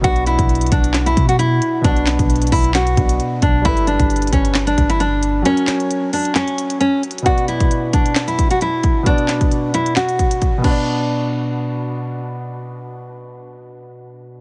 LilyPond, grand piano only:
\new Staff \with { instrumentName = "Grand piano" } { \time 4/4 \key b \minor \tempo 4 = 133 <b, b d' fis'>1 | <b, b d' fis'>2~ <b, b d' fis'>8 <b, b d' fis'>4. | <g g' a' b'>1 | <fis fis' ais' cis''>1 |
<b, b fis' d''>1 | <b, b fis' d''>2.~ <b, b fis' d''>8 <b, b fis' d''>8~ | <b, b fis' d''>1~ | <b, b fis' d''>1 | }